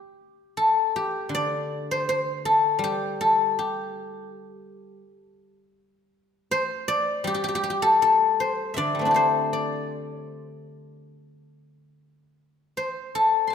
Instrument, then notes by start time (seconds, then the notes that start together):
guzheng
Already playing: G4
0.57 A4
0.96 G4
1.29 D3
1.35 D5
1.91 C5
2.09 C5
2.45 A4
2.79 G3
2.84 G4
3.21 A4
3.59 G4
6.51 C5
6.88 D5
7.24 G3 G4
7.34 G4
7.44 G4
7.49 G4
7.55 G4
7.63 G4
7.70 G4
7.82 A4
8.02 A4
8.40 C5
8.74 D3 D5 E5
8.95 G3
8.99 A3 C4
9.05 D4 E4
9.11 G4 A4
9.16 C5
9.53 D5
10.13 C#5
10.27 C5
12.77 C5
13.15 A4
13.47 A5 C6